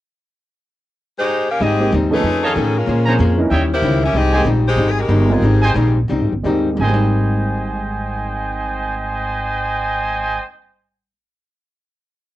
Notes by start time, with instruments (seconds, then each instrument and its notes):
1.18 saxophone section G#3 D#4 G4 C5
1.50 saxophone section C#4 G4 A#4 F5
1.60 upright bass G#1, hollow-body jazz guitar G#2 G3 C4 D#4, saxophone section C4 G4 G#4 D#5
1.80 grand piano G#3 A#3 C4 D#4 G4
1.92 upright bass D#2, hollow-body jazz guitar G#2 G3 C4 D#4
2.10 grand piano F3 A3 C#4 D#4 A4, saxophone section A3 D#4 G#4 B4
2.23 upright bass F2, hollow-body jazz guitar F3 C#4 D#4
2.27 hollow-body jazz guitar A4
2.43 saxophone section D#3 C#4 G#4 A4, trumpet section C#5 D#5 F5 A5
2.55 upright bass A2, hollow-body jazz guitar F3 C#4 D#4 A4
2.77 saxophone section G#3 C#4 F4 A#4
2.86 upright bass A#2, hollow-body jazz guitar A#3 C#4 G#4 C5
3.06 grand piano F3 A#3 C4 C#4 G#4, trumpet section C5 C#5 G#5 A#5
3.19 upright bass F2, hollow-body jazz guitar A#3 C#4 G#4 C5
3.38 grand piano E3 A#3 C#4 D#4 A#4
3.50 upright bass D#2, hollow-body jazz guitar D#3 G3 C#4, trumpet section C#5 D#5 E5 G5
3.54 hollow-body jazz guitar E4
3.74 saxophone section A#3 E4 G4 C5
3.82 upright bass C#2, hollow-body jazz guitar D#3 G3 C#4 E4
4.04 saxophone section C#4 G4 A#4 E5
4.13 upright bass C2, hollow-body jazz guitar G#2 G3 C4 D#4, saxophone section C4 G4 G#4 D#5
4.32 grand piano G#3 A#3 C4 D#4 G4, trumpet section C5 D#5 G5 G#5
4.45 upright bass A#1, hollow-body jazz guitar G#2 G3 C4 D#4
4.67 saxophone section G#3 D#4 G4 C5
4.76 upright bass G#1, hollow-body jazz guitar G#2 G3 C4 D#4
4.90 saxophone section G#4
4.99 saxophone section G#3 D#4 G4 A#4
5.08 upright bass G1, hollow-body jazz guitar G#2 G3 C4 D#4
5.29 saxophone section D#3 C4 G4 G#4, grand piano G#3 A#3 C4 D#4 F4
5.41 upright bass G#1, hollow-body jazz guitar G#2 G3 C4 D#4
5.62 trumpet section C5 D#5 G5 G#5
5.74 upright bass A#1, hollow-body jazz guitar G#2 G3 C4 D#4
6.08 upright bass C2, hollow-body jazz guitar G#2 G3 C4 D#4
6.21 upright bass G#1
6.32 upright bass G1
6.43 upright bass D#2, hollow-body jazz guitar G#2 G3 C4 D#4, grand piano G#3 A#3 C4 D#4 G4
6.75 grand piano G#2 G#3, hollow-body jazz guitar G#2
6.79 upright bass G#1, grand piano A#3 C4, trumpet section C5 D#5 G5 G#5
6.87 grand piano G3, hollow-body jazz guitar C4
6.94 hollow-body jazz guitar D#4